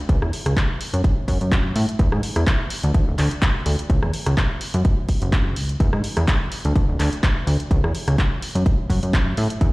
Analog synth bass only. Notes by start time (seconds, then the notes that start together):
0.09 C#2
0.22 E2
0.46 C#2
0.94 F#2
1.28 F#2
1.41 F#2
1.76 A2
1.99 E2
2.12 G#2
2.36 E2
2.84 D2
2.95 D2
3.08 D1
3.19 D2
3.66 D2
3.90 C#2
4.03 E2
4.26 C#2
4.74 F#2
5.22 F#1
5.56 C#2
5.80 E2
5.94 G#2
6.17 E2
6.65 D2
6.88 D1
6.99 D2
7.47 D2
7.71 C#2
7.84 E2
8.08 C#2
8.55 F#2
8.90 F#2
9.03 F#2
9.38 A2
9.61 E2